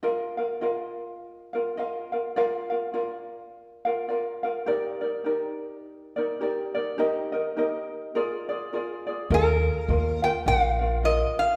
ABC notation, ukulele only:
X:1
M:4/4
L:1/8
Q:"Swing" 1/4=104
K:Eb
V:1 name="Ukulele"
[FBef] [FBf] [FBef]3 [FBf] [FBef] [FBf] | [FBdf] [FBf] [FBdf]3 [FBf] [FBdf] [FBf] | [EGBd] [EBd] [EGBd]3 [EBd] [EGBd] [EBd] | [EGBe] [EBe] [EGBe]2 [FABd] [FAd] [FABd] [FAd] |
[FBef]2 [FBef] [FBf] [FBef] [FBf] [FBef]2 |]